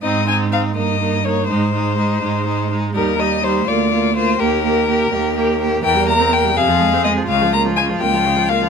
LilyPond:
<<
  \new Staff \with { instrumentName = "Violin" } { \time 6/8 \key aes \major \tempo 4. = 83 ees''8 aes''8 f''8 ees''4 des''8 | c''2~ c''8 r8 | bes'8 ees''8 c''8 d''4 c''8 | bes'2~ bes'8 r8 |
g''8 bes''8 g''8 f''4 ees''8 | f''8 bes''8 aes''8 g''4 f''8 | }
  \new Staff \with { instrumentName = "Violin" } { \time 6/8 \key aes \major ees'8 ees'8 ees'8 ees'8 ees'8 ees'8 | ees'8 ees'8 ees'8 ees'8 ees'8 ees'8 | ees'8 ees'8 ees'8 f'8 f'8 f'8 | g'8 g'8 g'8 g'8 g'8 g'8 |
bes'4. aes'4. | f'2. | }
  \new Staff \with { instrumentName = "Viola" } { \clef bass \time 6/8 \key aes \major c'8 c'8 c'8 bes8 bes8 bes8 | aes8 aes8 aes8 aes8 aes8 aes8 | g8 g8 g8 bes8 bes8 bes8 | bes8 bes8 bes8 bes8 bes8 bes8 |
e16 g16 bes16 c'16 bes16 g16 c16 f16 aes16 c'16 aes16 f16 | des16 f16 bes16 f16 des16 f16 bes16 f16 des16 f16 bes16 f16 | }
  \new Staff \with { instrumentName = "Cello" } { \clef bass \time 6/8 \key aes \major aes,4. g,4. | aes,4. aes,4. | ees,4. d,4. | ees,4. ees,4. |
e,4. f,4. | des,4. des,4. | }
>>